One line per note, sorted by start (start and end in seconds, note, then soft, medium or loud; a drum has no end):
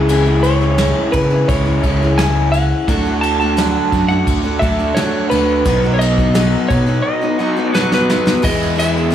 0.00 0.91 C#2 medium
0.00 1.46 C#3 medium
0.00 1.47 E3 medium
0.00 1.47 G#3 medium
0.00 1.48 C#4 medium
0.00 1.48 E4 medium
0.00 0.45 G#4 medium
0.08 0.26 C#3 medium
0.08 0.27 E3 medium
0.08 0.27 C#4 medium
0.08 0.26 E4 medium
0.08 0.25 G#4 medium
0.08 ride medium
0.26 0.62 C#4 soft
0.26 0.60 E4 soft
0.26 0.60 G#4 medium
0.43 1.15 C#5 loud
0.43 ride medium
0.61 0.78 C#4 soft
0.61 0.78 E4 soft
0.61 0.78 G#4 soft
0.78 1.13 C#3 medium
0.78 1.12 E3 medium
0.78 1.12 C#4 medium
0.78 1.12 E4 medium
0.78 1.13 G#4 medium
0.78 snare loud
0.78 ride medium
1.12 1.43 C#3 medium
1.12 1.31 E3 medium
1.12 1.31 C#4 medium
1.12 1.30 E4 medium
1.12 1.29 G#4 medium
1.12 1.49 B4 medium
1.12 kick medium
1.12 ride medium
1.30 1.66 C#4 soft
1.30 1.66 E4 soft
1.30 1.64 G#4 medium
1.48 1.78 C#2 medium
1.48 1.81 C#3 medium
1.48 1.82 E3 medium
1.48 1.82 G#3 medium
1.48 1.82 C#4 medium
1.48 1.81 E4 medium
1.48 2.20 C#5 loud
1.48 kick loud
1.48 ride medium
1.66 1.84 C#4 soft
1.66 1.84 E4 soft
1.66 1.83 G#4 medium
1.83 2.72 C#2 medium
1.83 2.52 C#3 medium
1.83 2.52 E3 medium
1.83 2.52 G#3 medium
1.83 2.01 C#4 medium
1.83 2.02 E4 medium
1.83 2.01 G#4 medium
1.83 kick medium
1.83 ride medium
2.03 2.19 C#4 soft
2.03 2.20 E4 soft
2.03 2.19 G#4 medium
2.18 2.53 C#3 medium
2.18 2.53 E3 medium
2.18 2.53 C#4 medium
2.18 2.53 E4 medium
2.18 2.54 G#4 medium
2.18 2.50 G#5 loud
2.18 snare loud
2.18 ride medium
2.52 2.88 E3 medium
2.52 2.88 C#4 medium
2.52 2.88 E4 medium
2.52 2.89 G#4 medium
2.52 3.21 F#5 loud
2.52 ride medium
2.88 3.76 D2 loud
2.88 3.05 D3 medium
2.88 3.06 F#3 medium
2.88 3.06 A3 medium
2.88 3.82 D4 medium
2.88 3.06 D4 medium
2.88 3.83 F#4 medium
2.88 3.04 F#4 medium
2.88 3.83 A4 medium
2.88 kick loud
2.88 ride medium
3.06 3.41 A3 soft
3.06 3.41 D4 medium
3.06 3.39 F#4 medium
3.21 3.38 A5 loud
3.21 ride medium
3.40 3.56 A3 soft
3.40 3.57 D4 soft
3.40 3.57 F#4 medium
3.40 4.11 A5 medium
3.57 3.92 D3 medium
3.57 3.91 F#3 medium
3.57 3.92 A3 medium
3.57 3.92 D4 medium
3.57 3.92 F#4 medium
3.57 snare loud
3.57 ride medium
3.91 4.21 F#2 medium
3.91 4.10 F#3 medium
3.91 4.10 A3 medium
3.91 4.39 D4 medium
3.91 4.10 D4 medium
3.91 4.39 F#4 medium
3.91 4.40 A4 medium
3.91 kick medium
3.91 ride medium
3.95 4.09 F#4 medium
4.08 4.44 A3 soft
4.08 4.44 D4 soft
4.08 4.42 F#4 medium
4.08 4.59 F#5 loud
4.27 4.56 D2 medium
4.27 kick loud
4.27 ride medium
4.43 4.61 A3 soft
4.43 5.54 D4 medium
4.43 4.62 D4 soft
4.43 4.61 F#4 medium
4.43 5.55 F#4 medium
4.43 5.55 A4 medium
4.59 4.91 D2 medium
4.59 4.79 F#3 medium
4.59 4.79 A3 medium
4.59 4.96 E5 medium
4.59 kick medium
4.59 ride medium
4.64 4.95 D3 medium
4.64 4.79 D4 medium
4.64 4.78 F#4 medium
4.80 4.96 A3 soft
4.80 4.96 D4 soft
4.80 4.97 F#4 medium
4.94 5.31 D3 medium
4.94 5.30 F#3 medium
4.94 5.30 A3 medium
4.94 5.31 D4 medium
4.94 5.31 F#4 medium
4.94 5.29 C#5 medium
4.94 snare loud
4.94 ride medium
5.30 5.61 D2 medium
5.30 5.66 F#3 medium
5.30 5.66 A3 medium
5.30 5.66 D4 medium
5.30 5.66 F#4 medium
5.30 5.93 B4 medium
5.30 ride medium
5.65 6.54 B1 loud
5.65 5.83 B2 medium
5.65 5.84 F#3 medium
5.65 5.84 B3 medium
5.65 6.60 D#4 medium
5.65 5.84 D#4 medium
5.65 6.60 F#4 medium
5.65 5.83 F#4 medium
5.65 6.61 B4 medium
5.65 kick loud
5.65 ride medium
5.84 6.19 B3 soft
5.84 6.19 D#4 soft
5.84 6.18 F#4 soft
5.94 6.01 C#5 medium
5.99 6.65 D#5 loud
5.99 ride medium
6.18 6.35 B3 soft
6.18 6.35 D#4 soft
6.18 6.35 F#4 medium
6.18 kick medium
6.34 6.70 B2 medium
6.34 6.69 F#3 medium
6.34 6.70 B3 medium
6.34 6.70 D#4 medium
6.34 6.71 F#4 medium
6.34 snare loud
6.34 ride medium
6.68 6.99 B2 medium
6.68 6.88 F#3 medium
6.68 6.87 B3 medium
6.68 7.17 D#4 medium
6.68 6.87 D#4 medium
6.68 7.18 F#4 medium
6.68 7.18 B4 medium
6.68 7.02 C#5 medium
6.68 kick medium
6.68 ride medium
6.72 6.85 F#4 medium
6.87 7.23 B3 soft
6.87 7.21 D#4 soft
6.87 7.20 F#4 medium
7.02 7.73 D#5 medium
7.21 7.39 B3 soft
7.21 7.40 D#4 soft
7.21 8.32 D#4 medium
7.21 7.39 F#4 soft
7.21 8.33 F#4 medium
7.21 8.33 C#5 medium
7.39 7.73 B2 medium
7.39 7.56 F#3 medium
7.39 7.57 B3 medium
7.39 7.56 D#4 medium
7.39 7.55 F#4 medium
7.57 7.74 B3 soft
7.57 7.74 D#4 medium
7.57 7.74 F#4 medium
7.73 8.09 B2 medium
7.73 8.08 F#3 medium
7.73 8.09 B3 medium
7.73 8.09 D#4 medium
7.73 8.10 F#4 medium
7.73 7.92 B4 medium
7.73 8.03 C#5 medium
7.73 snare medium
7.92 8.46 B4 medium
7.92 snare medium
8.10 8.26 F#3 medium
8.10 8.26 B3 medium
8.10 8.25 D#4 medium
8.10 8.24 F#4 medium
8.10 snare medium
8.26 8.42 B3 soft
8.26 8.42 D#4 soft
8.26 8.43 F#4 medium
8.26 snare medium
8.42 9.11 E2 medium
8.42 9.15 E2 medium
8.42 9.12 B2 medium
8.42 8.75 E3 medium
8.42 8.96 G#3 medium
8.42 8.76 B3 medium
8.42 8.76 E4 medium
8.42 8.75 E4 medium
8.42 8.77 G#4 medium
8.42 8.75 G#4 medium
8.42 8.75 B4 medium
8.42 8.79 D#5 medium
8.42 kick loud
8.42 crash loud
8.42 tambourine soft
8.42 crash medium
8.63 tambourine soft
8.76 9.09 E3 medium
8.76 9.10 B3 medium
8.76 9.11 E4 medium
8.76 9.15 E4 medium
8.76 9.11 G#4 medium
8.76 9.15 G#4 medium
8.76 9.15 C#5 medium
8.76 9.15 E5 loud
8.76 tambourine medium
8.76 crash medium
8.94 9.13 E3 medium
8.94 9.13 G#3 medium
8.94 9.14 B3 medium
8.94 9.15 E4 medium
8.94 tambourine soft
9.10 9.15 E3 medium
9.10 9.15 B3 medium